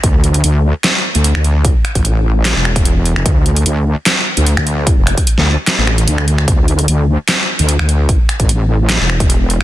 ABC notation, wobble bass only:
X:1
M:4/4
L:1/16
Q:"Swing 16ths" 1/4=149
K:Dm
V:1 name="Wobble bass" clef=bass
D,,4 D,,3 z4 D,,2 D,,3- | D,, z2 A,,,6 E,,,6 F,,, | D,,4 D,,3 z4 D,,2 D,,3- | D,, F,,,2 z2 D,,2 z2 A,,,3 D,,4 |
D,,4 D,,3 z4 D,,2 D,,3- | D,, z2 A,,,6 E,,,6 z |]